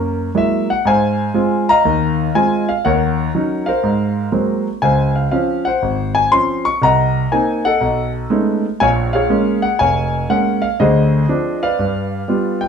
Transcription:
0.00 0.28 F#2 medium
0.00 0.28 A#3 medium
0.35 0.69 F#3 soft
0.35 0.69 G#3 soft
0.35 0.69 A#3 soft
0.35 0.69 E4 medium
0.35 0.67 E5 medium
0.70 0.86 F#5 medium
0.85 1.28 G#2 medium
0.85 1.81 C5 medium
0.85 1.69 F5 medium
0.85 1.70 G#5 medium
1.34 1.69 G#3 medium
1.34 1.69 C4 medium
1.34 1.69 F4 medium
1.69 2.64 D#5 medium
1.69 2.64 F5 medium
1.69 2.37 A#5 medium
1.85 2.27 D#2 medium
1.85 2.28 D#3 medium
2.35 2.69 G#3 soft
2.35 2.69 C4 soft
2.35 2.69 F4 medium
2.35 2.68 G#5 medium
2.69 2.85 F5 medium
2.85 3.27 D#2 medium
2.85 3.67 A#4 medium
2.85 3.80 C#5 medium
2.85 3.69 F#5 medium
3.35 3.68 F#3 soft
3.35 3.68 C#4 soft
3.35 3.68 D#4 medium
3.66 4.62 A#4 soft
3.66 4.62 C5 medium
3.66 4.29 F5 medium
3.83 4.26 G#2 medium
4.32 4.67 F#3 soft
4.32 4.67 G#3 soft
4.32 4.67 A#3 soft
4.32 4.67 C4 soft
4.82 5.25 C#2 medium
4.82 5.66 C5 soft
4.82 5.14 F5 soft
4.82 5.12 G#5 medium
5.16 5.30 F5 medium
5.31 5.66 F3 medium
5.31 5.67 C4 soft
5.31 5.67 C#4 medium
5.31 5.62 F5 medium
5.65 6.61 C5 medium
5.65 6.11 F#5 medium
5.82 6.25 G#1 medium
6.15 6.32 G#5 medium
6.32 6.66 F3 soft
6.32 6.66 C4 soft
6.32 6.66 C#4 soft
6.32 6.65 C6 medium
6.65 6.82 C#6 medium
6.82 7.24 C2 medium
6.82 7.65 D#5 medium
6.82 7.64 F#5 medium
6.82 7.33 A#5 medium
7.32 7.66 A#3 medium
7.32 7.66 C4 soft
7.32 7.66 D#4 medium
7.32 7.62 G#5 medium
7.65 8.60 A4 medium
7.65 8.60 D#5 soft
7.65 8.10 F#5 medium
7.81 8.24 B1 medium
8.30 8.64 G#3 soft
8.30 8.65 A3 soft
8.30 8.65 B3 soft
8.30 8.65 C#4 soft
8.30 8.65 D#4 medium
8.80 9.23 A#1 medium
8.80 9.14 C#5 medium
8.80 9.12 F5 medium
8.80 8.88 G#5 medium
9.13 10.09 G#4 medium
9.13 9.79 C#5 medium
9.13 9.64 F5 medium
9.30 9.64 G#3 medium
9.30 9.64 A#3 soft
9.30 9.65 C#4 medium
9.62 9.78 F#5 medium
9.79 10.23 F1 medium
9.79 10.75 C#5 medium
9.79 10.60 F5 medium
9.79 10.30 G#5 medium
10.30 10.64 G#3 soft
10.30 10.64 A#3 soft
10.30 10.64 C#4 medium
10.30 10.63 F#5 medium
10.62 10.79 F5 medium
10.80 11.22 D2 medium
10.80 11.22 D3 medium
10.80 11.75 G#4 medium
10.80 11.75 C5 medium
10.80 11.64 D#5 medium
11.29 11.63 F3 medium
11.29 11.63 C4 soft
11.29 11.63 D4 medium
11.63 12.57 B4 medium
11.63 12.57 D5 medium
11.63 12.57 F5 medium
11.79 12.21 G2 medium
12.28 12.62 G3 soft
12.28 12.62 B3 soft
12.28 12.63 F4 soft
12.61 12.68 G5 medium

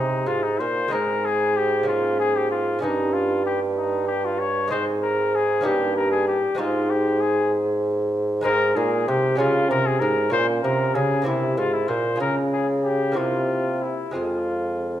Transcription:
0.00 0.23 C3 medium
0.00 0.28 C3 medium
0.00 0.86 G#3 soft
0.00 0.87 C4 soft
0.00 0.28 D#4 medium
0.00 0.88 D#4 soft
0.26 0.56 G#2 medium
0.26 0.62 G#2 medium
0.26 0.45 F4 medium
0.43 0.61 D#4 medium
0.59 0.93 A#2 medium
0.59 0.90 A#2 soft
0.59 0.94 C5 medium
0.88 1.83 G#3 soft
0.88 1.84 C4 soft
0.88 1.85 D#4 soft
0.92 2.79 G#2 soft
0.92 2.79 G#2 medium
0.92 1.26 A#4 medium
1.25 1.58 G#4 medium
1.57 1.87 G4 medium
1.83 2.77 A#3 soft
1.83 2.78 C#4 soft
1.88 2.19 F4 medium
2.20 2.37 G#4 medium
2.36 2.51 G4 medium
2.51 2.82 F4 medium
2.79 4.66 A#3 soft
2.79 4.66 C#4 soft
2.79 4.67 D#4 soft
2.79 3.15 D#4 medium
2.83 4.68 G2 medium
3.13 3.45 F4 medium
3.46 3.60 G4 medium
3.78 4.07 D#4 medium
4.07 4.27 G4 medium
4.25 4.41 F4 medium
4.39 4.70 C#5 medium
4.68 5.60 G#3 soft
4.68 5.61 C4 soft
4.68 5.62 D#4 soft
4.68 4.85 C5 medium
4.72 5.67 G#2 medium
4.72 5.61 G#2 medium
5.03 5.37 A#4 medium
5.35 5.66 G#4 medium
5.61 6.53 A#3 soft
5.61 6.54 C#4 soft
5.61 6.55 D#4 soft
5.61 5.96 G4 medium
5.65 6.54 G2 medium
5.65 6.42 G2 medium
5.96 6.11 A#4 medium
6.11 6.27 G#4 medium
6.28 6.61 G4 medium
6.55 8.39 G#3 soft
6.55 8.39 C4 soft
6.55 8.40 D#4 medium
6.59 8.41 G#2 medium
6.59 6.92 F4 medium
6.90 7.22 G4 medium
7.21 7.52 G#4 medium
8.41 9.33 G#3 soft
8.41 9.34 C4 soft
8.41 9.35 D#4 medium
8.41 8.78 A#4 loud
8.45 8.73 G#2 medium
8.45 8.74 G#2 medium
8.76 9.04 A#2 medium
8.76 9.07 A#2 medium
8.76 9.10 G#4 medium
9.08 9.38 C3 medium
9.08 9.36 C3 medium
9.08 9.39 G4 loud
9.35 9.70 C#3 medium
9.35 9.67 G#3 soft
9.35 10.28 C#4 medium
9.35 10.29 F4 soft
9.35 9.69 F4 medium
9.40 9.67 C#3 medium
9.69 10.00 C3 medium
9.69 9.98 C3 medium
9.69 9.88 A#4 loud
9.86 10.01 G#4 medium
10.00 10.31 G#2 medium
10.00 10.29 G#2 medium
10.00 10.31 A#4 medium
10.30 10.62 A#2 medium
10.30 10.61 A#2 medium
10.30 11.22 C#4 soft
10.30 11.23 F4 soft
10.30 10.46 C5 loud
10.64 10.94 C3 medium
10.64 10.92 C3 medium
10.64 10.96 A#4 medium
10.95 11.23 C#3 medium
10.95 11.26 C#3 medium
10.95 11.26 G#4 medium
11.22 12.15 A#3 soft
11.22 12.16 C4 soft
11.22 12.16 E4 soft
11.26 11.54 C3 medium
11.26 11.60 C3 medium
11.26 11.60 E4 medium
11.57 11.85 G#2 medium
11.57 11.89 G#2 medium
11.57 11.75 F4 medium
11.73 11.90 E4 medium
11.88 12.17 A#2 medium
11.88 12.20 A#2 medium
11.88 12.20 C5 medium
12.16 13.11 G#3 soft
12.16 13.12 F4 soft
12.20 13.12 C#3 medium
12.20 13.18 C#3 medium
12.20 12.35 A#4 medium
12.53 12.67 G#4 medium
12.85 13.19 G4 medium
13.12 14.10 A#3 soft
13.12 14.11 C4 soft
13.12 14.11 E4 soft
13.16 13.99 C3 medium
13.16 14.12 C3 soft
13.16 13.84 F4 medium
13.82 14.14 E4 medium
14.11 15.00 G#3 soft
14.11 15.00 C4 soft
14.11 15.00 F4 soft
14.11 15.00 F4 medium
14.15 15.00 F2 soft
14.15 15.00 F2 medium

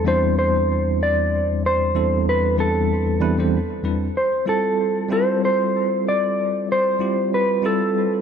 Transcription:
0.04 1.91 E2 medium
0.04 1.92 G3 medium
0.04 1.92 C4 medium
0.04 1.92 D4 medium
0.04 1.93 E4 medium
0.04 1.93 C5 medium
0.04 0.36 C5 medium
0.39 0.97 C5 medium
1.03 1.66 D5 medium
1.66 2.29 C5 medium
1.94 2.55 E2 medium
1.94 2.55 G3 medium
1.94 2.55 C4 medium
1.94 2.55 D4 medium
1.94 2.56 E4 medium
1.94 2.56 A4 medium
2.29 2.60 B4 medium
2.57 3.18 E2 medium
2.57 3.19 G3 medium
2.57 3.19 C4 medium
2.57 3.19 D4 medium
2.57 3.19 E4 medium
2.57 3.82 A4 medium
2.57 3.19 B4 medium
3.20 3.35 E2 medium
3.20 3.36 G3 medium
3.20 3.36 C4 medium
3.20 3.36 D4 medium
3.20 3.36 E4 medium
3.20 3.36 B4 medium
3.38 3.58 E2 medium
3.38 3.58 G3 medium
3.38 3.58 C4 medium
3.38 3.58 D4 medium
3.38 3.58 E4 medium
3.38 3.59 C5 medium
3.83 4.06 E2 medium
3.83 4.06 G3 medium
3.83 4.06 C4 medium
3.83 4.07 D4 medium
3.83 4.07 E4 medium
3.83 4.07 B4 medium
4.17 4.46 C5 medium
4.46 5.07 G3 medium
4.46 5.07 C4 medium
4.46 5.08 E4 medium
4.46 5.08 F4 medium
4.46 5.08 A4 medium
4.46 5.12 A4 medium
5.09 6.96 G3 medium
5.09 6.97 C4 medium
5.09 6.97 E4 medium
5.09 6.98 F4 medium
5.09 6.98 A4 medium
5.09 5.44 C5 medium
5.45 6.08 C5 medium
6.08 6.72 D5 medium
6.72 7.34 C5 medium
6.99 7.60 G3 medium
6.99 7.60 C4 medium
6.99 7.61 E4 medium
6.99 7.61 F4 medium
6.99 7.61 G4 medium
7.34 7.66 B4 medium
7.62 8.21 G3 medium
7.62 8.21 C4 medium
7.62 8.21 E4 medium
7.62 8.21 F4 medium
7.62 8.21 A4 medium

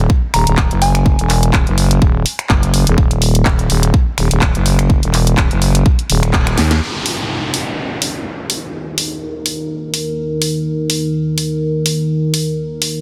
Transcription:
0.10 kick loud
0.34 0.45 D#1 medium
0.34 0.54 A#5 medium
0.34 finger snap medium
0.34 open hi-hat loud
0.47 0.69 D#1 loud
0.47 closed hi-hat medium
0.57 kick loud
0.57 clap loud
0.71 1.17 F#1 loud
0.71 closed hi-hat soft
0.82 1.49 G#5 medium
0.82 open hi-hat loud
0.95 finger snap medium
0.95 closed hi-hat medium
1.06 kick loud
1.19 1.52 E1 loud
1.19 closed hi-hat medium
1.29 clap soft
1.29 open hi-hat loud
1.43 closed hi-hat medium
1.53 kick loud
1.53 clap loud
1.67 2.00 F#1 medium
1.67 closed hi-hat soft
1.78 open hi-hat medium
1.91 closed hi-hat medium
2.02 2.24 D#1 loud
2.02 kick loud
2.26 open hi-hat loud
2.39 finger snap medium
2.39 closed hi-hat medium
2.49 2.85 F#1 loud
2.49 kick loud
2.49 clap loud
2.63 closed hi-hat medium
2.74 open hi-hat loud
2.87 2.96 E1 loud
2.87 closed hi-hat medium
2.98 kick loud
3.11 closed hi-hat medium
3.22 open hi-hat loud
3.35 closed hi-hat medium
3.45 3.68 D#1 medium
3.45 kick loud
3.45 clap loud
3.59 closed hi-hat soft
3.70 3.92 D#1 loud
3.70 open hi-hat loud
3.83 closed hi-hat medium
3.94 kick loud
4.18 4.29 D#1 medium
4.18 finger snap medium
4.18 open hi-hat loud
4.31 4.53 D#1 medium
4.31 closed hi-hat medium
4.41 kick loud
4.41 clap loud
4.55 5.01 F#1 loud
4.55 closed hi-hat medium
4.66 open hi-hat loud
4.79 finger snap medium
4.79 closed hi-hat medium
4.90 kick loud
5.03 5.36 E1 medium
5.03 closed hi-hat medium
5.13 clap soft
5.13 open hi-hat loud
5.27 closed hi-hat medium
5.37 kick loud
5.37 clap loud
5.51 5.84 F#1 medium
5.51 closed hi-hat soft
5.62 open hi-hat loud
5.75 closed hi-hat medium
5.86 kick loud
5.99 closed hi-hat soft
6.10 6.56 D#1 medium
6.10 open hi-hat loud
6.23 finger snap medium
6.23 closed hi-hat medium
6.33 kick loud
6.33 clap loud
6.47 finger snap medium
6.47 closed hi-hat medium
6.58 6.80 D#2 loud
6.58 snare medium
6.58 open hi-hat loud
6.71 snare medium
6.71 closed hi-hat medium
6.82 13.01 D#3 medium
6.82 13.01 D#4 medium
6.82 13.01 A#4 medium
6.82 downlifter medium
7.06 open hi-hat medium
7.54 open hi-hat medium
8.02 open hi-hat medium
8.50 open hi-hat loud
8.98 open hi-hat loud
9.46 open hi-hat medium
9.94 open hi-hat loud
10.42 open hi-hat medium
10.90 open hi-hat loud
11.38 open hi-hat loud
11.86 open hi-hat loud
12.34 open hi-hat loud
12.82 open hi-hat loud

